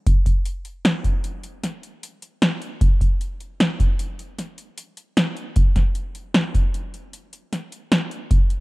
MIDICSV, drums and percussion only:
0, 0, Header, 1, 2, 480
1, 0, Start_track
1, 0, Tempo, 392670
1, 81, Time_signature, 7, 2, 24, 8
1, 10514, End_track
2, 0, Start_track
2, 0, Title_t, "Drums"
2, 80, Note_on_c, 9, 42, 78
2, 81, Note_on_c, 9, 36, 103
2, 202, Note_off_c, 9, 42, 0
2, 203, Note_off_c, 9, 36, 0
2, 318, Note_on_c, 9, 36, 74
2, 320, Note_on_c, 9, 42, 61
2, 440, Note_off_c, 9, 36, 0
2, 442, Note_off_c, 9, 42, 0
2, 557, Note_on_c, 9, 42, 86
2, 679, Note_off_c, 9, 42, 0
2, 794, Note_on_c, 9, 42, 64
2, 916, Note_off_c, 9, 42, 0
2, 1038, Note_on_c, 9, 38, 99
2, 1038, Note_on_c, 9, 42, 77
2, 1160, Note_off_c, 9, 38, 0
2, 1160, Note_off_c, 9, 42, 0
2, 1275, Note_on_c, 9, 36, 63
2, 1277, Note_on_c, 9, 42, 61
2, 1398, Note_off_c, 9, 36, 0
2, 1399, Note_off_c, 9, 42, 0
2, 1516, Note_on_c, 9, 42, 77
2, 1638, Note_off_c, 9, 42, 0
2, 1754, Note_on_c, 9, 42, 70
2, 1877, Note_off_c, 9, 42, 0
2, 1999, Note_on_c, 9, 38, 35
2, 1999, Note_on_c, 9, 42, 92
2, 2121, Note_off_c, 9, 38, 0
2, 2121, Note_off_c, 9, 42, 0
2, 2241, Note_on_c, 9, 42, 54
2, 2363, Note_off_c, 9, 42, 0
2, 2484, Note_on_c, 9, 42, 88
2, 2607, Note_off_c, 9, 42, 0
2, 2717, Note_on_c, 9, 42, 62
2, 2839, Note_off_c, 9, 42, 0
2, 2958, Note_on_c, 9, 38, 107
2, 2958, Note_on_c, 9, 42, 91
2, 3080, Note_off_c, 9, 38, 0
2, 3080, Note_off_c, 9, 42, 0
2, 3198, Note_on_c, 9, 42, 60
2, 3320, Note_off_c, 9, 42, 0
2, 3437, Note_on_c, 9, 36, 104
2, 3437, Note_on_c, 9, 42, 84
2, 3559, Note_off_c, 9, 36, 0
2, 3559, Note_off_c, 9, 42, 0
2, 3679, Note_on_c, 9, 36, 77
2, 3683, Note_on_c, 9, 42, 60
2, 3801, Note_off_c, 9, 36, 0
2, 3805, Note_off_c, 9, 42, 0
2, 3922, Note_on_c, 9, 42, 74
2, 4044, Note_off_c, 9, 42, 0
2, 4162, Note_on_c, 9, 42, 55
2, 4284, Note_off_c, 9, 42, 0
2, 4403, Note_on_c, 9, 38, 97
2, 4403, Note_on_c, 9, 42, 67
2, 4525, Note_off_c, 9, 38, 0
2, 4525, Note_off_c, 9, 42, 0
2, 4642, Note_on_c, 9, 36, 74
2, 4644, Note_on_c, 9, 42, 61
2, 4764, Note_off_c, 9, 36, 0
2, 4766, Note_off_c, 9, 42, 0
2, 4880, Note_on_c, 9, 42, 88
2, 5003, Note_off_c, 9, 42, 0
2, 5124, Note_on_c, 9, 42, 62
2, 5246, Note_off_c, 9, 42, 0
2, 5360, Note_on_c, 9, 38, 37
2, 5360, Note_on_c, 9, 42, 83
2, 5483, Note_off_c, 9, 38, 0
2, 5483, Note_off_c, 9, 42, 0
2, 5597, Note_on_c, 9, 42, 58
2, 5719, Note_off_c, 9, 42, 0
2, 5837, Note_on_c, 9, 42, 92
2, 5960, Note_off_c, 9, 42, 0
2, 6076, Note_on_c, 9, 42, 69
2, 6198, Note_off_c, 9, 42, 0
2, 6319, Note_on_c, 9, 38, 102
2, 6319, Note_on_c, 9, 42, 93
2, 6441, Note_off_c, 9, 38, 0
2, 6441, Note_off_c, 9, 42, 0
2, 6559, Note_on_c, 9, 42, 63
2, 6681, Note_off_c, 9, 42, 0
2, 6795, Note_on_c, 9, 42, 88
2, 6800, Note_on_c, 9, 36, 105
2, 6917, Note_off_c, 9, 42, 0
2, 6922, Note_off_c, 9, 36, 0
2, 7038, Note_on_c, 9, 38, 35
2, 7038, Note_on_c, 9, 42, 57
2, 7040, Note_on_c, 9, 36, 77
2, 7160, Note_off_c, 9, 38, 0
2, 7160, Note_off_c, 9, 42, 0
2, 7162, Note_off_c, 9, 36, 0
2, 7274, Note_on_c, 9, 42, 78
2, 7396, Note_off_c, 9, 42, 0
2, 7516, Note_on_c, 9, 42, 65
2, 7639, Note_off_c, 9, 42, 0
2, 7754, Note_on_c, 9, 38, 108
2, 7754, Note_on_c, 9, 42, 75
2, 7877, Note_off_c, 9, 38, 0
2, 7877, Note_off_c, 9, 42, 0
2, 8000, Note_on_c, 9, 36, 73
2, 8001, Note_on_c, 9, 42, 59
2, 8122, Note_off_c, 9, 36, 0
2, 8123, Note_off_c, 9, 42, 0
2, 8242, Note_on_c, 9, 42, 74
2, 8364, Note_off_c, 9, 42, 0
2, 8481, Note_on_c, 9, 42, 58
2, 8603, Note_off_c, 9, 42, 0
2, 8720, Note_on_c, 9, 42, 82
2, 8842, Note_off_c, 9, 42, 0
2, 8958, Note_on_c, 9, 42, 57
2, 9080, Note_off_c, 9, 42, 0
2, 9200, Note_on_c, 9, 38, 31
2, 9200, Note_on_c, 9, 42, 81
2, 9322, Note_off_c, 9, 38, 0
2, 9322, Note_off_c, 9, 42, 0
2, 9439, Note_on_c, 9, 42, 62
2, 9562, Note_off_c, 9, 42, 0
2, 9677, Note_on_c, 9, 38, 113
2, 9677, Note_on_c, 9, 42, 93
2, 9799, Note_off_c, 9, 38, 0
2, 9799, Note_off_c, 9, 42, 0
2, 9917, Note_on_c, 9, 42, 63
2, 10040, Note_off_c, 9, 42, 0
2, 10155, Note_on_c, 9, 42, 88
2, 10156, Note_on_c, 9, 36, 108
2, 10277, Note_off_c, 9, 42, 0
2, 10278, Note_off_c, 9, 36, 0
2, 10392, Note_on_c, 9, 42, 67
2, 10514, Note_off_c, 9, 42, 0
2, 10514, End_track
0, 0, End_of_file